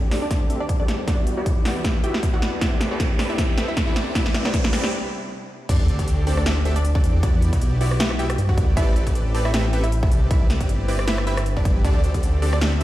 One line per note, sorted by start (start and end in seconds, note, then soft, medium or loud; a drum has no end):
0.00 0.87 D2 loud
0.00 1.06 D3 medium
0.00 2.58 G3 medium
0.00 1.06 A3 medium
0.00 1.06 C4 medium
0.00 1.06 G4 medium
0.00 riser medium
0.11 0.28 C4 loud
0.11 0.28 D4 medium
0.11 0.28 G4 medium
0.11 0.28 A4 medium
0.11 0.28 D5 loud
0.11 snare medium
0.11 open hi-hat medium
0.22 0.50 D4 medium
0.22 0.50 D5 medium
0.31 0.42 C4 loud
0.31 0.42 D4 medium
0.31 0.42 G4 medium
0.31 0.42 A4 medium
0.31 0.42 E5 loud
0.31 kick medium
0.31 snare medium
0.31 closed hi-hat medium
0.50 0.61 C4 medium
0.50 0.61 D4 medium
0.50 0.61 G4 medium
0.50 0.61 A4 medium
0.50 0.61 E5 medium
0.50 closed hi-hat medium
0.60 0.74 D4 medium
0.60 0.74 D5 medium
0.69 kick medium
0.69 closed hi-hat medium
0.80 1.06 C4 medium
0.80 1.01 D4 medium
0.80 1.06 D4 medium
0.80 1.06 G4 medium
0.80 1.06 A4 medium
0.80 1.01 D5 medium
0.80 1.06 D5 loud
0.88 1.36 E2 medium
0.88 snare medium
0.88 closed hi-hat medium
1.07 2.60 E3 medium
1.07 1.35 B3 medium
1.07 4.12 B3 medium
1.07 1.29 D4 medium
1.07 5.65 D4 medium
1.07 1.35 E4 medium
1.07 1.35 F#4 medium
1.07 2.60 F#4 medium
1.07 1.35 G4 medium
1.07 1.29 D5 loud
1.07 1.35 D5 loud
1.07 kick medium
1.07 snare medium
1.07 closed hi-hat medium
1.27 closed hi-hat medium
1.37 2.60 B1 medium
1.37 1.63 B3 medium
1.37 1.63 E4 medium
1.37 1.63 F#4 medium
1.37 1.63 G4 medium
1.37 1.63 D5 loud
1.46 kick loud
1.46 closed hi-hat medium
1.65 1.82 B3 loud
1.65 1.82 E4 medium
1.65 1.82 F#4 medium
1.65 1.82 G4 medium
1.65 1.82 D5 loud
1.65 snare medium
1.65 open hi-hat medium
1.84 1.96 B3 loud
1.84 1.96 E4 medium
1.84 1.96 F#4 medium
1.84 1.96 G4 medium
1.84 1.96 E5 loud
1.84 kick medium
1.84 snare medium
1.84 closed hi-hat medium
2.04 2.15 B3 medium
2.04 2.15 E4 medium
2.04 2.15 F#4 medium
2.04 2.15 G4 medium
2.04 2.26 G4 medium
2.04 2.15 E5 medium
2.04 2.26 G5 medium
2.04 closed hi-hat medium
2.14 snare medium
2.23 kick medium
2.23 closed hi-hat medium
2.34 2.59 B3 medium
2.34 2.59 E4 medium
2.34 2.59 F#4 medium
2.34 2.55 F#4 medium
2.34 2.59 G4 medium
2.34 2.59 D5 medium
2.34 2.55 F#5 medium
2.42 snare medium
2.42 closed hi-hat medium
2.61 3.95 A1 loud
2.61 4.14 C3 medium
2.61 4.14 A3 medium
2.61 2.89 C4 medium
2.61 2.83 E4 medium
2.61 4.14 G4 medium
2.61 2.89 G4 medium
2.61 2.89 A4 medium
2.61 2.89 B4 medium
2.61 2.89 D5 loud
2.61 2.83 E5 loud
2.61 kick loud
2.61 snare medium
2.61 closed hi-hat medium
2.81 snare medium
2.81 closed hi-hat medium
2.91 3.17 C4 medium
2.91 3.17 G4 medium
2.91 3.17 A4 medium
2.91 3.17 B4 medium
2.91 3.17 D5 loud
3.00 kick loud
3.00 snare medium
3.00 closed hi-hat medium
3.19 3.36 C4 loud
3.19 3.36 G4 medium
3.19 3.36 A4 medium
3.19 3.36 B4 medium
3.19 3.36 D5 loud
3.19 snare medium
3.19 open hi-hat medium
3.30 3.58 E4 medium
3.30 3.58 E5 medium
3.38 3.49 C4 loud
3.38 3.49 G4 medium
3.38 3.49 A4 medium
3.38 3.49 B4 loud
3.38 3.49 E5 loud
3.38 kick loud
3.38 snare medium
3.38 closed hi-hat medium
3.58 3.69 C4 medium
3.58 3.69 G4 medium
3.58 3.69 A4 medium
3.58 3.69 B4 medium
3.58 3.69 E5 medium
3.58 snare medium
3.58 closed hi-hat medium
3.68 3.82 E4 medium
3.68 3.82 E5 medium
3.77 kick medium
3.77 snare medium
3.77 closed hi-hat medium
3.87 4.13 C4 medium
3.87 4.09 E4 medium
3.87 4.13 G4 medium
3.87 4.13 A4 medium
3.87 4.13 B4 medium
3.87 4.13 D5 loud
3.87 4.09 E5 medium
3.96 4.44 C2 medium
3.96 snare medium
3.96 closed hi-hat medium
4.15 5.68 C3 medium
4.15 5.68 G3 medium
4.15 5.68 B3 medium
4.15 4.43 C4 loud
4.15 4.37 E4 medium
4.15 5.68 E4 medium
4.15 4.43 E4 medium
4.15 4.43 G4 medium
4.15 4.43 B4 medium
4.15 4.43 D5 loud
4.15 4.37 E5 loud
4.15 kick loud
4.15 snare medium
4.15 closed hi-hat medium
4.26 snare medium
4.34 snare loud
4.34 closed hi-hat medium
4.45 4.92 G1 medium
4.45 4.71 C4 medium
4.45 4.71 E4 medium
4.45 4.71 G4 medium
4.45 4.71 B4 medium
4.45 4.71 D5 loud
4.45 snare medium
4.54 kick loud
4.54 snare medium
4.54 closed hi-hat medium
4.64 snare medium
4.73 4.90 C4 loud
4.73 4.90 E4 medium
4.73 4.90 G4 medium
4.73 4.90 B4 medium
4.73 4.90 D5 loud
4.73 snare loud
4.73 open hi-hat medium
4.84 snare medium
5.69 7.03 D2 medium
5.69 5.96 C4 medium
5.69 5.91 D4 medium
5.69 5.96 D4 medium
5.69 5.96 G4 medium
5.69 5.96 A4 medium
5.69 5.91 D5 loud
5.69 5.96 D5 loud
5.69 kick loud
5.69 closed hi-hat medium
5.69 crash loud
5.69 sub drop medium
5.88 closed hi-hat medium
5.99 6.25 C4 medium
5.99 6.25 D4 medium
5.99 6.25 G4 medium
5.99 6.25 A4 medium
5.99 6.25 D5 loud
5.99 kick medium
5.99 closed hi-hat medium
6.08 closed hi-hat medium
6.27 6.43 C4 loud
6.27 6.43 D4 medium
6.27 6.43 G4 medium
6.27 6.43 A4 medium
6.27 6.43 D5 loud
6.27 open hi-hat medium
6.37 6.65 D4 medium
6.37 6.65 D5 medium
6.37 cross-stick medium
6.46 6.57 C4 loud
6.46 6.57 D4 medium
6.46 6.57 G4 medium
6.46 6.57 A4 loud
6.46 6.57 E5 loud
6.46 snare loud
6.46 closed hi-hat medium
6.65 6.76 C4 medium
6.65 6.76 D4 medium
6.65 6.76 G4 medium
6.65 6.76 A4 medium
6.65 6.76 E5 medium
6.65 closed hi-hat medium
6.76 6.90 D4 medium
6.76 6.90 D5 loud
6.76 closed hi-hat medium
6.85 closed hi-hat medium
6.95 7.21 C4 medium
6.95 7.21 D4 medium
6.95 7.17 D4 medium
6.95 7.21 G4 medium
6.95 7.21 A4 medium
6.95 7.21 D5 loud
6.95 7.17 D5 loud
6.95 kick loud
7.04 7.51 E2 medium
7.04 closed hi-hat medium
7.23 7.50 B3 medium
7.23 7.45 D4 medium
7.23 7.50 E4 medium
7.23 7.50 F#4 medium
7.23 7.50 G4 medium
7.23 7.45 D5 loud
7.23 7.50 D5 loud
7.23 kick loud
7.23 closed hi-hat medium
7.42 closed hi-hat medium
7.53 8.38 B1 medium
7.53 7.79 B3 medium
7.53 7.79 E4 medium
7.53 7.79 F#4 medium
7.53 7.79 G4 medium
7.53 7.79 D5 medium
7.53 kick medium
7.53 closed hi-hat medium
7.61 closed hi-hat medium
7.81 7.97 B3 loud
7.81 7.97 E4 medium
7.81 7.97 F#4 medium
7.81 7.97 G4 medium
7.81 7.97 D5 loud
7.81 open hi-hat medium
7.91 cross-stick medium
8.00 8.11 B3 loud
8.00 8.11 E4 medium
8.00 8.11 F#4 loud
8.00 8.11 G4 medium
8.00 8.11 E5 loud
8.00 snare loud
8.00 closed hi-hat medium
8.11 cross-stick medium
8.19 8.30 B3 medium
8.19 8.30 E4 medium
8.19 8.30 F#4 medium
8.19 8.41 G4 medium
8.19 8.30 G4 medium
8.19 8.30 E5 medium
8.19 8.41 G5 loud
8.19 closed hi-hat medium
8.30 cross-stick medium
8.30 closed hi-hat medium
8.38 8.56 G2 medium
8.38 closed hi-hat medium
8.49 8.75 B3 medium
8.49 8.75 E4 medium
8.49 8.70 F#4 medium
8.49 8.75 F#4 medium
8.49 8.75 G4 medium
8.49 8.75 D5 loud
8.49 8.70 F#5 loud
8.49 kick medium
8.58 8.75 D2 medium
8.58 kick loud
8.58 closed hi-hat medium
8.77 10.10 A1 loud
8.77 9.04 C4 loud
8.77 8.99 E4 medium
8.77 9.04 G4 medium
8.77 9.04 A4 medium
8.77 9.04 B4 medium
8.77 9.04 D5 loud
8.77 8.99 E5 loud
8.77 kick loud
8.77 closed hi-hat medium
8.96 closed hi-hat medium
9.07 9.32 C4 medium
9.07 9.32 G4 medium
9.07 9.32 A4 medium
9.07 9.32 B4 medium
9.07 9.32 D5 loud
9.07 kick medium
9.07 closed hi-hat medium
9.15 closed hi-hat medium
9.35 9.51 C4 loud
9.35 9.51 G4 medium
9.35 9.51 A4 loud
9.35 9.51 B4 medium
9.35 9.51 D5 loud
9.35 open hi-hat medium
9.45 9.73 E4 medium
9.45 9.73 E5 loud
9.45 cross-stick medium
9.54 9.65 C4 loud
9.54 9.65 G4 loud
9.54 9.65 A4 medium
9.54 9.65 B4 medium
9.54 9.65 E5 loud
9.54 snare loud
9.54 closed hi-hat medium
9.73 9.84 C4 medium
9.73 9.84 G4 medium
9.73 9.84 A4 medium
9.73 9.84 B4 medium
9.73 9.84 E5 medium
9.73 closed hi-hat medium
9.84 9.97 E4 medium
9.84 9.97 E5 medium
9.84 closed hi-hat medium
9.92 closed hi-hat medium
10.03 10.29 C4 medium
10.03 10.24 E4 medium
10.03 10.29 G4 medium
10.03 10.29 A4 medium
10.03 10.29 B4 medium
10.03 10.29 D5 loud
10.03 10.24 E5 medium
10.03 kick loud
10.11 10.59 C2 medium
10.11 closed hi-hat medium
10.31 10.58 C4 medium
10.31 10.53 E4 medium
10.31 10.58 E4 medium
10.31 10.58 G4 medium
10.31 10.58 B4 medium
10.31 10.58 D5 loud
10.31 10.53 E5 loud
10.31 kick loud
10.31 closed hi-hat medium
10.50 snare medium
10.50 closed hi-hat medium
10.61 11.45 G1 medium
10.61 10.86 C4 medium
10.61 10.86 E4 medium
10.61 10.86 G4 medium
10.61 10.86 B4 medium
10.61 10.86 D5 loud
10.61 kick medium
10.61 closed hi-hat medium
10.69 closed hi-hat medium
10.88 11.05 C4 loud
10.88 11.05 E4 medium
10.88 11.05 G4 medium
10.88 11.05 B4 medium
10.88 11.05 D5 loud
10.88 open hi-hat medium
10.99 cross-stick medium
11.08 11.19 C4 loud
11.08 11.19 E4 loud
11.08 11.19 G4 medium
11.08 11.19 B4 medium
11.08 11.19 E5 loud
11.08 snare loud
11.08 closed hi-hat medium
11.18 cross-stick medium
11.27 11.38 C4 medium
11.27 11.49 E4 medium
11.27 11.38 E4 medium
11.27 11.38 G4 medium
11.27 11.38 B4 medium
11.27 11.38 E5 medium
11.27 11.49 E5 medium
11.27 closed hi-hat medium
11.37 cross-stick medium
11.37 closed hi-hat medium
11.46 11.83 G1 loud
11.46 closed hi-hat medium
11.57 11.82 C4 medium
11.57 11.78 D4 medium
11.57 11.82 E4 medium
11.57 11.82 G4 medium
11.57 11.83 B4 medium
11.57 11.82 D5 medium
11.57 11.78 D5 medium
11.57 kick medium
11.65 kick loud
11.65 closed hi-hat medium
11.85 12.84 D2 loud
11.85 12.12 C4 loud
11.85 12.06 D4 medium
11.85 12.12 D4 medium
11.85 12.12 G4 medium
11.85 12.12 A4 medium
11.85 12.06 D5 loud
11.85 12.12 D5 loud
11.85 kick loud
11.85 closed hi-hat medium
11.85 ride medium
12.04 closed hi-hat medium
12.14 12.40 C4 medium
12.14 12.40 D4 medium
12.14 12.40 G4 medium
12.14 12.40 A4 medium
12.14 kick medium
12.14 closed hi-hat medium
12.23 closed hi-hat medium
12.42 12.59 C4 loud
12.42 12.59 D4 medium
12.42 12.59 G4 medium
12.42 12.59 A4 loud
12.42 12.59 D5 loud
12.42 open hi-hat medium
12.53 12.81 D4 medium
12.53 12.81 D5 loud
12.53 cross-stick medium
12.61 12.73 C4 loud
12.61 12.73 D4 loud
12.61 12.73 G4 medium
12.61 12.73 A4 medium
12.61 12.73 E5 loud
12.61 snare loud
12.61 closed hi-hat medium
12.61 ride soft